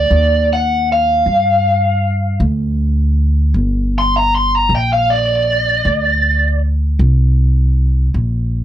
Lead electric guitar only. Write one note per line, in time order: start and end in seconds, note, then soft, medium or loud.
0.00 0.49 D5 medium
0.53 0.88 F#5 medium
0.92 2.39 F5 medium
3.98 4.15 C6 medium
4.17 4.34 A#5 medium
4.35 4.55 C6 medium
4.55 4.72 A#5 medium
4.75 4.92 G5 medium
4.93 5.10 F5 medium
5.10 6.59 D5 medium